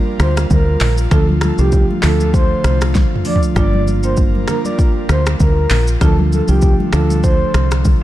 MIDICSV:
0, 0, Header, 1, 6, 480
1, 0, Start_track
1, 0, Key_signature, -2, "minor"
1, 0, Tempo, 612245
1, 875, Time_signature, 4, 2, 24, 8
1, 6296, End_track
2, 0, Start_track
2, 0, Title_t, "Soft synth lead"
2, 0, Program_c, 0, 80
2, 157, Note_on_c, 0, 72, 86
2, 268, Note_off_c, 0, 72, 0
2, 402, Note_on_c, 0, 70, 92
2, 748, Note_off_c, 0, 70, 0
2, 879, Note_on_c, 0, 69, 109
2, 989, Note_off_c, 0, 69, 0
2, 1122, Note_on_c, 0, 69, 83
2, 1231, Note_off_c, 0, 69, 0
2, 1258, Note_on_c, 0, 67, 79
2, 1457, Note_off_c, 0, 67, 0
2, 1601, Note_on_c, 0, 69, 84
2, 1803, Note_off_c, 0, 69, 0
2, 1840, Note_on_c, 0, 72, 107
2, 2187, Note_off_c, 0, 72, 0
2, 2560, Note_on_c, 0, 74, 79
2, 2670, Note_off_c, 0, 74, 0
2, 2799, Note_on_c, 0, 74, 111
2, 3001, Note_off_c, 0, 74, 0
2, 3167, Note_on_c, 0, 72, 83
2, 3259, Note_off_c, 0, 72, 0
2, 3518, Note_on_c, 0, 70, 81
2, 3629, Note_off_c, 0, 70, 0
2, 3651, Note_on_c, 0, 74, 76
2, 3741, Note_off_c, 0, 74, 0
2, 3998, Note_on_c, 0, 72, 82
2, 4109, Note_off_c, 0, 72, 0
2, 4240, Note_on_c, 0, 70, 89
2, 4587, Note_off_c, 0, 70, 0
2, 4719, Note_on_c, 0, 69, 112
2, 4829, Note_off_c, 0, 69, 0
2, 4960, Note_on_c, 0, 69, 84
2, 5070, Note_off_c, 0, 69, 0
2, 5088, Note_on_c, 0, 67, 80
2, 5292, Note_off_c, 0, 67, 0
2, 5434, Note_on_c, 0, 69, 84
2, 5638, Note_off_c, 0, 69, 0
2, 5675, Note_on_c, 0, 72, 107
2, 6024, Note_off_c, 0, 72, 0
2, 6296, End_track
3, 0, Start_track
3, 0, Title_t, "Marimba"
3, 0, Program_c, 1, 12
3, 874, Note_on_c, 1, 53, 90
3, 874, Note_on_c, 1, 57, 86
3, 875, Note_on_c, 1, 62, 84
3, 877, Note_on_c, 1, 65, 100
3, 1025, Note_off_c, 1, 57, 0
3, 1026, Note_off_c, 1, 53, 0
3, 1026, Note_off_c, 1, 62, 0
3, 1027, Note_off_c, 1, 65, 0
3, 1247, Note_on_c, 1, 53, 75
3, 1249, Note_on_c, 1, 57, 70
3, 1250, Note_on_c, 1, 62, 70
3, 1251, Note_on_c, 1, 65, 85
3, 1378, Note_off_c, 1, 53, 0
3, 1380, Note_off_c, 1, 57, 0
3, 1380, Note_off_c, 1, 62, 0
3, 1380, Note_off_c, 1, 65, 0
3, 1593, Note_on_c, 1, 53, 77
3, 1594, Note_on_c, 1, 57, 65
3, 1597, Note_on_c, 1, 62, 68
3, 1598, Note_on_c, 1, 65, 82
3, 1745, Note_off_c, 1, 53, 0
3, 1745, Note_off_c, 1, 57, 0
3, 1747, Note_off_c, 1, 62, 0
3, 1748, Note_off_c, 1, 65, 0
3, 2552, Note_on_c, 1, 53, 80
3, 2554, Note_on_c, 1, 57, 70
3, 2554, Note_on_c, 1, 62, 71
3, 2557, Note_on_c, 1, 65, 88
3, 2705, Note_off_c, 1, 53, 0
3, 2706, Note_off_c, 1, 57, 0
3, 2706, Note_off_c, 1, 62, 0
3, 2707, Note_off_c, 1, 65, 0
3, 2790, Note_on_c, 1, 55, 93
3, 2790, Note_on_c, 1, 58, 85
3, 2791, Note_on_c, 1, 62, 84
3, 2794, Note_on_c, 1, 65, 101
3, 2944, Note_off_c, 1, 55, 0
3, 2944, Note_off_c, 1, 58, 0
3, 2944, Note_off_c, 1, 62, 0
3, 2946, Note_off_c, 1, 65, 0
3, 3163, Note_on_c, 1, 55, 77
3, 3165, Note_on_c, 1, 58, 68
3, 3166, Note_on_c, 1, 62, 68
3, 3168, Note_on_c, 1, 65, 85
3, 3297, Note_off_c, 1, 55, 0
3, 3298, Note_off_c, 1, 58, 0
3, 3298, Note_off_c, 1, 62, 0
3, 3299, Note_off_c, 1, 65, 0
3, 3512, Note_on_c, 1, 55, 73
3, 3514, Note_on_c, 1, 58, 64
3, 3516, Note_on_c, 1, 62, 68
3, 3516, Note_on_c, 1, 65, 81
3, 3665, Note_off_c, 1, 55, 0
3, 3666, Note_off_c, 1, 58, 0
3, 3667, Note_off_c, 1, 62, 0
3, 3667, Note_off_c, 1, 65, 0
3, 4712, Note_on_c, 1, 53, 92
3, 4714, Note_on_c, 1, 57, 87
3, 4716, Note_on_c, 1, 62, 86
3, 4718, Note_on_c, 1, 65, 100
3, 4865, Note_off_c, 1, 53, 0
3, 4866, Note_off_c, 1, 57, 0
3, 4867, Note_off_c, 1, 62, 0
3, 4868, Note_off_c, 1, 65, 0
3, 5082, Note_on_c, 1, 53, 76
3, 5084, Note_on_c, 1, 57, 69
3, 5085, Note_on_c, 1, 62, 68
3, 5087, Note_on_c, 1, 65, 82
3, 5216, Note_off_c, 1, 53, 0
3, 5217, Note_off_c, 1, 57, 0
3, 5218, Note_off_c, 1, 62, 0
3, 5219, Note_off_c, 1, 65, 0
3, 5430, Note_on_c, 1, 53, 75
3, 5431, Note_on_c, 1, 57, 67
3, 5434, Note_on_c, 1, 62, 69
3, 5434, Note_on_c, 1, 65, 82
3, 5584, Note_off_c, 1, 53, 0
3, 5584, Note_off_c, 1, 57, 0
3, 5586, Note_off_c, 1, 62, 0
3, 5586, Note_off_c, 1, 65, 0
3, 6296, End_track
4, 0, Start_track
4, 0, Title_t, "Analog synth pad"
4, 0, Program_c, 2, 89
4, 0, Note_on_c, 2, 55, 85
4, 0, Note_on_c, 2, 65, 93
4, 0, Note_on_c, 2, 70, 90
4, 855, Note_off_c, 2, 55, 0
4, 855, Note_off_c, 2, 70, 0
4, 875, Note_on_c, 2, 57, 73
4, 876, Note_on_c, 2, 50, 84
4, 2776, Note_off_c, 2, 50, 0
4, 2776, Note_off_c, 2, 57, 0
4, 2796, Note_on_c, 2, 55, 86
4, 2797, Note_on_c, 2, 70, 90
4, 4696, Note_off_c, 2, 55, 0
4, 4696, Note_off_c, 2, 70, 0
4, 4712, Note_on_c, 2, 50, 84
4, 4713, Note_on_c, 2, 57, 80
4, 6296, Note_off_c, 2, 50, 0
4, 6296, Note_off_c, 2, 57, 0
4, 6296, Note_off_c, 2, 65, 0
4, 6296, End_track
5, 0, Start_track
5, 0, Title_t, "Fingered electric bass"
5, 0, Program_c, 3, 33
5, 154, Note_on_c, 3, 38, 89
5, 350, Note_off_c, 3, 38, 0
5, 397, Note_on_c, 3, 38, 104
5, 592, Note_off_c, 3, 38, 0
5, 634, Note_on_c, 3, 34, 90
5, 830, Note_off_c, 3, 34, 0
5, 874, Note_on_c, 3, 38, 108
5, 1179, Note_off_c, 3, 38, 0
5, 1246, Note_on_c, 3, 36, 102
5, 1442, Note_off_c, 3, 36, 0
5, 1595, Note_on_c, 3, 38, 82
5, 1987, Note_off_c, 3, 38, 0
5, 2073, Note_on_c, 3, 36, 87
5, 2378, Note_off_c, 3, 36, 0
5, 2793, Note_on_c, 3, 31, 104
5, 3482, Note_off_c, 3, 31, 0
5, 3993, Note_on_c, 3, 38, 86
5, 4190, Note_off_c, 3, 38, 0
5, 4236, Note_on_c, 3, 38, 99
5, 4432, Note_off_c, 3, 38, 0
5, 4474, Note_on_c, 3, 34, 90
5, 4670, Note_off_c, 3, 34, 0
5, 4714, Note_on_c, 3, 38, 111
5, 5018, Note_off_c, 3, 38, 0
5, 5086, Note_on_c, 3, 36, 99
5, 5282, Note_off_c, 3, 36, 0
5, 5436, Note_on_c, 3, 38, 87
5, 5828, Note_off_c, 3, 38, 0
5, 5914, Note_on_c, 3, 36, 87
5, 6218, Note_off_c, 3, 36, 0
5, 6296, End_track
6, 0, Start_track
6, 0, Title_t, "Drums"
6, 154, Note_on_c, 9, 26, 77
6, 155, Note_on_c, 9, 37, 102
6, 156, Note_on_c, 9, 82, 54
6, 233, Note_off_c, 9, 26, 0
6, 233, Note_off_c, 9, 37, 0
6, 235, Note_off_c, 9, 82, 0
6, 290, Note_on_c, 9, 82, 68
6, 293, Note_on_c, 9, 26, 76
6, 293, Note_on_c, 9, 37, 103
6, 368, Note_off_c, 9, 82, 0
6, 371, Note_off_c, 9, 26, 0
6, 371, Note_off_c, 9, 37, 0
6, 396, Note_on_c, 9, 82, 80
6, 397, Note_on_c, 9, 36, 96
6, 399, Note_on_c, 9, 63, 76
6, 399, Note_on_c, 9, 64, 76
6, 474, Note_off_c, 9, 82, 0
6, 475, Note_off_c, 9, 36, 0
6, 478, Note_off_c, 9, 63, 0
6, 478, Note_off_c, 9, 64, 0
6, 630, Note_on_c, 9, 46, 74
6, 630, Note_on_c, 9, 82, 55
6, 632, Note_on_c, 9, 39, 106
6, 632, Note_on_c, 9, 64, 75
6, 708, Note_off_c, 9, 46, 0
6, 708, Note_off_c, 9, 82, 0
6, 710, Note_off_c, 9, 39, 0
6, 710, Note_off_c, 9, 64, 0
6, 767, Note_on_c, 9, 82, 84
6, 845, Note_off_c, 9, 82, 0
6, 871, Note_on_c, 9, 64, 78
6, 872, Note_on_c, 9, 26, 70
6, 873, Note_on_c, 9, 37, 83
6, 874, Note_on_c, 9, 36, 121
6, 874, Note_on_c, 9, 82, 70
6, 949, Note_off_c, 9, 64, 0
6, 951, Note_off_c, 9, 26, 0
6, 951, Note_off_c, 9, 37, 0
6, 952, Note_off_c, 9, 36, 0
6, 953, Note_off_c, 9, 82, 0
6, 1010, Note_on_c, 9, 63, 74
6, 1089, Note_off_c, 9, 63, 0
6, 1107, Note_on_c, 9, 26, 84
6, 1107, Note_on_c, 9, 37, 105
6, 1119, Note_on_c, 9, 63, 70
6, 1119, Note_on_c, 9, 82, 50
6, 1186, Note_off_c, 9, 26, 0
6, 1186, Note_off_c, 9, 37, 0
6, 1197, Note_off_c, 9, 63, 0
6, 1197, Note_off_c, 9, 82, 0
6, 1241, Note_on_c, 9, 82, 74
6, 1320, Note_off_c, 9, 82, 0
6, 1348, Note_on_c, 9, 82, 75
6, 1353, Note_on_c, 9, 36, 95
6, 1426, Note_off_c, 9, 82, 0
6, 1432, Note_off_c, 9, 36, 0
6, 1494, Note_on_c, 9, 63, 78
6, 1572, Note_off_c, 9, 63, 0
6, 1589, Note_on_c, 9, 26, 73
6, 1589, Note_on_c, 9, 37, 90
6, 1589, Note_on_c, 9, 39, 86
6, 1594, Note_on_c, 9, 46, 89
6, 1594, Note_on_c, 9, 82, 64
6, 1601, Note_on_c, 9, 64, 77
6, 1667, Note_off_c, 9, 26, 0
6, 1667, Note_off_c, 9, 37, 0
6, 1667, Note_off_c, 9, 39, 0
6, 1673, Note_off_c, 9, 46, 0
6, 1673, Note_off_c, 9, 82, 0
6, 1680, Note_off_c, 9, 64, 0
6, 1727, Note_on_c, 9, 63, 56
6, 1728, Note_on_c, 9, 82, 74
6, 1805, Note_off_c, 9, 63, 0
6, 1806, Note_off_c, 9, 82, 0
6, 1833, Note_on_c, 9, 36, 115
6, 1834, Note_on_c, 9, 82, 70
6, 1912, Note_off_c, 9, 36, 0
6, 1912, Note_off_c, 9, 82, 0
6, 2072, Note_on_c, 9, 26, 79
6, 2073, Note_on_c, 9, 37, 103
6, 2074, Note_on_c, 9, 82, 52
6, 2151, Note_off_c, 9, 26, 0
6, 2151, Note_off_c, 9, 37, 0
6, 2153, Note_off_c, 9, 82, 0
6, 2206, Note_on_c, 9, 82, 69
6, 2209, Note_on_c, 9, 26, 80
6, 2209, Note_on_c, 9, 37, 100
6, 2284, Note_off_c, 9, 82, 0
6, 2287, Note_off_c, 9, 26, 0
6, 2287, Note_off_c, 9, 37, 0
6, 2313, Note_on_c, 9, 38, 62
6, 2313, Note_on_c, 9, 82, 81
6, 2315, Note_on_c, 9, 36, 90
6, 2318, Note_on_c, 9, 63, 73
6, 2318, Note_on_c, 9, 64, 73
6, 2391, Note_off_c, 9, 82, 0
6, 2392, Note_off_c, 9, 38, 0
6, 2393, Note_off_c, 9, 36, 0
6, 2396, Note_off_c, 9, 63, 0
6, 2396, Note_off_c, 9, 64, 0
6, 2473, Note_on_c, 9, 45, 70
6, 2547, Note_on_c, 9, 46, 74
6, 2547, Note_on_c, 9, 82, 53
6, 2550, Note_on_c, 9, 64, 74
6, 2552, Note_off_c, 9, 45, 0
6, 2626, Note_off_c, 9, 46, 0
6, 2626, Note_off_c, 9, 82, 0
6, 2628, Note_off_c, 9, 64, 0
6, 2633, Note_on_c, 9, 43, 116
6, 2686, Note_on_c, 9, 82, 85
6, 2711, Note_off_c, 9, 43, 0
6, 2764, Note_off_c, 9, 82, 0
6, 2787, Note_on_c, 9, 64, 78
6, 2792, Note_on_c, 9, 26, 69
6, 2792, Note_on_c, 9, 37, 89
6, 2793, Note_on_c, 9, 36, 120
6, 2794, Note_on_c, 9, 82, 70
6, 2865, Note_off_c, 9, 64, 0
6, 2870, Note_off_c, 9, 26, 0
6, 2870, Note_off_c, 9, 37, 0
6, 2871, Note_off_c, 9, 36, 0
6, 2872, Note_off_c, 9, 82, 0
6, 2927, Note_on_c, 9, 63, 72
6, 3006, Note_off_c, 9, 63, 0
6, 3035, Note_on_c, 9, 63, 73
6, 3038, Note_on_c, 9, 82, 50
6, 3113, Note_off_c, 9, 63, 0
6, 3117, Note_off_c, 9, 82, 0
6, 3161, Note_on_c, 9, 82, 77
6, 3240, Note_off_c, 9, 82, 0
6, 3267, Note_on_c, 9, 82, 76
6, 3273, Note_on_c, 9, 36, 98
6, 3345, Note_off_c, 9, 82, 0
6, 3351, Note_off_c, 9, 36, 0
6, 3411, Note_on_c, 9, 63, 81
6, 3489, Note_off_c, 9, 63, 0
6, 3509, Note_on_c, 9, 26, 75
6, 3509, Note_on_c, 9, 37, 92
6, 3515, Note_on_c, 9, 82, 64
6, 3519, Note_on_c, 9, 64, 81
6, 3587, Note_off_c, 9, 26, 0
6, 3587, Note_off_c, 9, 37, 0
6, 3593, Note_off_c, 9, 82, 0
6, 3598, Note_off_c, 9, 64, 0
6, 3645, Note_on_c, 9, 63, 60
6, 3647, Note_on_c, 9, 82, 71
6, 3724, Note_off_c, 9, 63, 0
6, 3725, Note_off_c, 9, 82, 0
6, 3753, Note_on_c, 9, 36, 108
6, 3753, Note_on_c, 9, 82, 70
6, 3831, Note_off_c, 9, 36, 0
6, 3832, Note_off_c, 9, 82, 0
6, 3992, Note_on_c, 9, 26, 80
6, 3992, Note_on_c, 9, 37, 101
6, 3994, Note_on_c, 9, 82, 55
6, 4070, Note_off_c, 9, 26, 0
6, 4071, Note_off_c, 9, 37, 0
6, 4072, Note_off_c, 9, 82, 0
6, 4126, Note_on_c, 9, 82, 68
6, 4129, Note_on_c, 9, 26, 80
6, 4129, Note_on_c, 9, 37, 101
6, 4204, Note_off_c, 9, 82, 0
6, 4207, Note_off_c, 9, 26, 0
6, 4208, Note_off_c, 9, 37, 0
6, 4233, Note_on_c, 9, 82, 82
6, 4236, Note_on_c, 9, 36, 93
6, 4238, Note_on_c, 9, 63, 73
6, 4238, Note_on_c, 9, 64, 75
6, 4312, Note_off_c, 9, 82, 0
6, 4314, Note_off_c, 9, 36, 0
6, 4316, Note_off_c, 9, 63, 0
6, 4316, Note_off_c, 9, 64, 0
6, 4468, Note_on_c, 9, 46, 74
6, 4468, Note_on_c, 9, 82, 51
6, 4470, Note_on_c, 9, 64, 75
6, 4471, Note_on_c, 9, 39, 105
6, 4547, Note_off_c, 9, 46, 0
6, 4547, Note_off_c, 9, 82, 0
6, 4548, Note_off_c, 9, 64, 0
6, 4549, Note_off_c, 9, 39, 0
6, 4606, Note_on_c, 9, 82, 83
6, 4684, Note_off_c, 9, 82, 0
6, 4709, Note_on_c, 9, 64, 77
6, 4713, Note_on_c, 9, 26, 69
6, 4713, Note_on_c, 9, 37, 87
6, 4714, Note_on_c, 9, 36, 119
6, 4715, Note_on_c, 9, 82, 73
6, 4787, Note_off_c, 9, 64, 0
6, 4791, Note_off_c, 9, 26, 0
6, 4791, Note_off_c, 9, 37, 0
6, 4792, Note_off_c, 9, 36, 0
6, 4793, Note_off_c, 9, 82, 0
6, 4848, Note_on_c, 9, 63, 77
6, 4926, Note_off_c, 9, 63, 0
6, 4956, Note_on_c, 9, 63, 68
6, 4959, Note_on_c, 9, 82, 48
6, 5035, Note_off_c, 9, 63, 0
6, 5038, Note_off_c, 9, 82, 0
6, 5081, Note_on_c, 9, 82, 76
6, 5159, Note_off_c, 9, 82, 0
6, 5188, Note_on_c, 9, 82, 74
6, 5194, Note_on_c, 9, 36, 94
6, 5266, Note_off_c, 9, 82, 0
6, 5272, Note_off_c, 9, 36, 0
6, 5332, Note_on_c, 9, 63, 83
6, 5411, Note_off_c, 9, 63, 0
6, 5430, Note_on_c, 9, 26, 72
6, 5430, Note_on_c, 9, 37, 93
6, 5436, Note_on_c, 9, 82, 65
6, 5439, Note_on_c, 9, 64, 80
6, 5508, Note_off_c, 9, 26, 0
6, 5508, Note_off_c, 9, 37, 0
6, 5514, Note_off_c, 9, 82, 0
6, 5518, Note_off_c, 9, 64, 0
6, 5567, Note_on_c, 9, 63, 58
6, 5568, Note_on_c, 9, 82, 71
6, 5645, Note_off_c, 9, 63, 0
6, 5647, Note_off_c, 9, 82, 0
6, 5674, Note_on_c, 9, 36, 110
6, 5674, Note_on_c, 9, 82, 70
6, 5752, Note_off_c, 9, 36, 0
6, 5752, Note_off_c, 9, 82, 0
6, 5914, Note_on_c, 9, 26, 81
6, 5914, Note_on_c, 9, 37, 101
6, 5916, Note_on_c, 9, 82, 54
6, 5992, Note_off_c, 9, 26, 0
6, 5993, Note_off_c, 9, 37, 0
6, 5994, Note_off_c, 9, 82, 0
6, 6047, Note_on_c, 9, 82, 69
6, 6050, Note_on_c, 9, 26, 79
6, 6050, Note_on_c, 9, 37, 99
6, 6126, Note_off_c, 9, 82, 0
6, 6129, Note_off_c, 9, 26, 0
6, 6129, Note_off_c, 9, 37, 0
6, 6154, Note_on_c, 9, 82, 83
6, 6156, Note_on_c, 9, 36, 91
6, 6158, Note_on_c, 9, 63, 75
6, 6158, Note_on_c, 9, 64, 76
6, 6232, Note_off_c, 9, 82, 0
6, 6234, Note_off_c, 9, 36, 0
6, 6236, Note_off_c, 9, 63, 0
6, 6236, Note_off_c, 9, 64, 0
6, 6296, End_track
0, 0, End_of_file